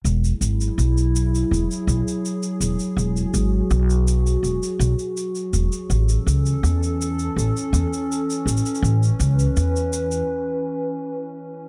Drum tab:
SH |x-x-x-x-x-x-x-x-x-x-x-x-x-x-x-x-|x-x-x---x-x-x-x-x-x-x-x-x-x-x-x-|x-x-x-x-x-x-x-x-x-x-x-x-x-x-xxxx|x-x-x-x-x-x-x-x-----------------|